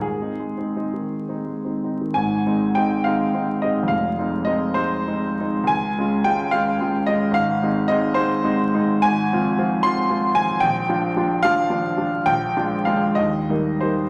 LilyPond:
\new Staff \with { instrumentName = "Grand piano" } { \time 6/8 \key aes \major \tempo 4. = 70 << { aes'4. r4. | aes''4 g''8 f''4 ees''8 | f''4 ees''8 c''4. | aes''4 g''8 f''4 ees''8 |
f''4 ees''8 c''4. | \key bes \mixolydian aes''4. c'''4 aes''8 | g''4. f''4. | g''4 f''8 ees''4 c''8 | } \\ { aes,16 <c' ees'>16 aes16 <c' ees'>16 <c' ees'>16 ees8 <c' ees'>16 aes16 <c' ees'>16 <c' ees'>16 ees16 | <aes,, aes,>8 <aes c' ees'>8 <aes c' ees'>8 <aes c' ees'>8 <aes c' ees'>8 <aes c' ees'>8 | <f,, f,>8 <aes c' ees'>8 <aes c' ees'>8 <aes c' ees'>8 <aes c' ees'>8 <aes c' ees'>8 | des,8 <aes des' f'>8 <aes des' f'>8 <aes des' f'>8 <aes des' f'>8 <aes des' f'>8 |
aes,,8 <aes c' ees'>8 <aes c' ees'>8 <aes c' ees'>8 <aes c' ees'>8 <aes c' ees'>8 | aes,,8 <f c' f'>8 <f c' f'>8 <f c' f'>8 <f c' f'>8 <f c' f'>8 | bes,,8 <f d' f'>8 <f d' f'>8 <f d' f'>8 <f d' f'>8 <f d' f'>8 | bes,,8 <aes d' f'>8 <aes d' f'>8 ees,8 <g bes ees'>8 <g bes ees'>8 | } >> }